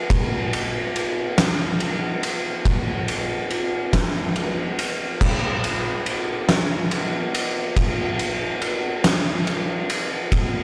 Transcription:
0.10 kick loud
0.10 ride loud
0.53 ride medium
0.96 ride medium
1.38 snare loud
1.38 ride loud
1.80 ride medium
2.23 ride medium
2.65 kick loud
2.65 ride loud
3.08 ride medium
3.50 ride medium
3.93 kick medium
3.93 snare loud
3.93 ride loud
4.36 ride medium
4.79 ride medium
5.21 kick loud
5.21 crash loud
5.64 ride medium
6.06 ride medium
6.49 snare loud
6.49 ride loud
6.91 ride medium
7.35 ride medium
7.77 kick loud
7.77 ride loud
8.19 ride medium
8.62 ride medium
9.04 snare loud
9.04 ride loud
9.47 ride medium
9.90 ride medium
10.32 kick loud
10.32 ride loud

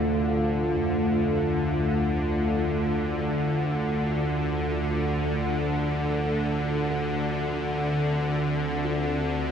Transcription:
0.00 9.52 D2 medium
0.00 3.57 C3 medium
0.00 9.52 D3 medium
0.00 6.72 A3 medium
0.00 9.52 F4 medium
0.00 6.72 D5 medium
0.00 7.95 F5 medium
0.74 6.54 F2 medium
6.71 9.52 D3 medium
6.91 9.04 A4 medium
7.15 9.52 C4 medium
7.42 9.52 D5 medium
8.30 9.52 G5 medium
8.85 9.52 F4 medium

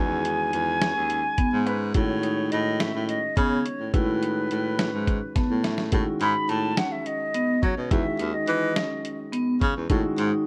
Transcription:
0.00 0.50 E2 medium
0.00 1.91 D#3 medium
0.00 1.91 G#3 medium
0.00 1.91 C#4 medium
0.00 0.17 E4 medium
0.00 1.91 F#4 medium
0.00 1.68 G#5 loud
0.25 0.66 D#4 medium
0.25 closed hi-hat medium
0.53 0.93 E2 medium
0.53 closed hi-hat medium
0.81 1.23 C#4 medium
0.81 snare loud
0.81 closed hi-hat medium
0.95 1.22 D#2 medium
1.10 closed hi-hat medium
1.38 1.59 B3 medium
1.38 kick medium
1.38 closed hi-hat medium
1.53 1.93 G#2 medium
1.66 1.87 C#4 medium
1.66 1.94 B4 medium
1.66 closed hi-hat soft
1.94 2.48 A2 medium
1.94 3.89 D#3 medium
1.94 3.89 G#3 soft
1.94 3.90 C#4 medium
1.94 2.16 E4 medium
1.94 3.90 F#4 medium
1.94 2.53 C#5 medium
1.94 kick loud
1.94 closed hi-hat medium
2.23 2.65 D#4 medium
2.23 closed hi-hat medium
2.52 2.92 A2 medium
2.52 2.82 D#5 medium
2.52 closed hi-hat medium
2.80 3.22 C#4 medium
2.80 3.07 E5 medium
2.80 snare loud
2.80 closed hi-hat medium
2.95 3.21 A2 medium
3.08 3.38 D#5 medium
3.08 closed hi-hat soft
3.36 3.64 C#3 medium
3.36 3.58 B3 medium
3.36 3.95 C#5 medium
3.36 kick medium
3.36 closed hi-hat medium
3.65 3.86 C#4 medium
3.65 closed hi-hat medium
3.80 3.93 A2 medium
3.93 4.47 A2 medium
3.93 5.88 D#3 medium
3.93 5.88 G#3 soft
3.93 5.89 C#4 soft
3.93 4.15 E4 medium
3.93 5.88 F#4 medium
3.93 5.64 B4 medium
3.93 kick loud
3.93 closed hi-hat medium
4.22 4.64 D#4 medium
4.22 closed hi-hat medium
4.51 4.91 A2 medium
4.51 closed hi-hat soft
4.79 5.21 C#4 medium
4.79 snare loud
4.79 closed hi-hat medium
4.93 5.20 G#2 medium
5.07 kick medium
5.07 closed hi-hat medium
5.35 5.56 B3 medium
5.35 5.62 A5 medium
5.35 kick medium
5.35 snare soft
5.35 closed hi-hat medium
5.50 5.90 A2 medium
5.64 5.85 C#4 medium
5.64 5.90 E5 medium
5.64 snare medium
5.64 closed hi-hat medium
5.78 snare medium
5.92 6.06 A2 medium
5.92 7.87 D#3 medium
5.92 7.87 G#3 medium
5.92 7.87 C#4 medium
5.92 6.13 E4 medium
5.92 7.87 F#4 medium
5.92 kick medium
5.92 closed hi-hat medium
6.21 6.34 G#2 medium
6.21 6.63 D#4 medium
6.21 6.51 B5 medium
6.21 closed hi-hat medium
6.49 6.76 A2 medium
6.49 6.79 A5 medium
6.49 closed hi-hat soft
6.77 7.19 C#4 medium
6.77 6.93 F#5 medium
6.77 snare loud
6.77 closed hi-hat medium
6.92 7.08 E5 medium
7.06 7.65 D#5 medium
7.06 closed hi-hat soft
7.34 7.55 B3 medium
7.34 closed hi-hat medium
7.62 7.76 F#3 medium
7.62 7.83 C#4 medium
7.62 7.93 C#5 medium
7.62 kick medium
7.62 closed hi-hat soft
7.77 7.90 B2 medium
7.91 8.05 E2 medium
7.91 9.86 D#3 medium
7.91 9.86 G#3 medium
7.91 9.86 C#4 soft
7.91 8.12 E4 medium
7.91 9.86 F#4 medium
7.91 8.35 E5 medium
7.91 kick loud
7.91 closed hi-hat medium
8.19 8.33 D#2 medium
8.19 8.61 D#4 medium
8.19 closed hi-hat medium
8.34 9.19 D#5 medium
8.48 8.75 E3 medium
8.48 closed hi-hat medium
8.76 9.18 C#4 medium
8.76 snare loud
8.76 closed hi-hat medium
9.05 closed hi-hat medium
9.32 9.54 B3 medium
9.32 closed hi-hat medium
9.61 9.75 C#3 medium
9.61 9.82 C#4 medium
9.61 kick medium
9.61 closed hi-hat soft
9.76 9.89 E2 medium
9.89 10.03 A2 medium
9.89 10.47 D#3 medium
9.89 10.47 G#3 medium
9.89 10.47 C#4 medium
9.89 10.11 E4 medium
9.89 10.47 F#4 medium
9.89 kick medium
9.89 closed hi-hat medium
10.18 10.32 G#2 medium
10.18 10.47 D#4 medium
10.18 closed hi-hat medium

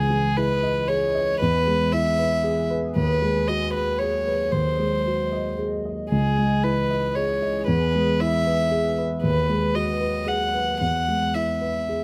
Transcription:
0.00 1.36 C#2 medium
0.00 2.91 E3 medium
0.00 0.38 G#4 medium
0.00 6.06 G#4 medium
0.00 1.35 D#5 medium
0.10 0.52 G#3 soft
0.37 0.78 E4 soft
0.37 0.90 B4 medium
0.63 1.04 D#5 soft
0.88 1.30 G#4 soft
0.88 1.40 C#5 medium
1.15 1.40 D#5 medium
1.40 2.93 E2 medium
1.40 1.94 B4 medium
1.40 4.53 B4 medium
1.67 2.08 G#3 soft
1.93 2.34 E4 soft
1.93 2.70 E5 medium
2.19 2.60 B4 medium
2.44 2.85 G#4 medium
2.70 2.96 B4 medium
2.96 4.49 D#2 medium
2.96 6.11 F#3 medium
2.96 3.50 B4 medium
3.22 3.63 G#3 soft
3.48 3.90 F#4 soft
3.48 3.73 D#5 medium
3.74 4.01 B4 medium
3.74 4.16 B4 soft
3.99 4.43 G#4 soft
3.99 4.53 C#5 medium
4.27 4.53 B4 soft
4.52 6.07 D#2 soft
4.52 5.58 C5 medium
4.52 7.68 D#5 medium
4.79 5.21 G#3 soft
5.07 5.48 F#4 soft
5.32 5.75 D#5 soft
5.59 6.01 G#4 soft
5.85 6.11 D#5 soft
6.11 7.64 C#2 soft
6.11 9.24 E3 medium
6.11 6.65 G#4 medium
6.11 12.04 G#4 medium
6.38 6.79 G#3 soft
6.63 7.05 E4 soft
6.63 7.17 B4 medium
6.90 7.31 D#5 soft
7.15 7.57 G#4 soft
7.15 7.66 C#5 medium
7.42 7.68 D#5 soft
7.67 9.19 E2 medium
7.67 8.21 B4 medium
7.67 12.04 B4 medium
7.95 8.36 G#3 soft
8.20 8.62 E4 soft
8.20 8.97 E5 medium
8.47 8.87 B4 medium
8.71 9.13 G#4 medium
8.98 9.24 B4 soft
9.23 10.77 D#2 medium
9.23 10.81 F#3 medium
9.23 9.76 B4 medium
9.49 9.91 G#3 soft
9.75 10.17 F#4 soft
9.75 10.30 D#5 medium
10.01 10.43 B4 soft
10.27 10.70 G#4 soft
10.27 10.80 F#5 medium
10.54 10.81 B4 soft
10.80 12.04 E2 soft
10.80 12.04 E3 medium
10.80 11.36 F#5 medium
11.08 11.51 G#3 soft
11.34 11.78 E4 soft
11.34 12.04 E5 medium
11.61 12.04 B4 soft
11.89 12.04 G#4 soft

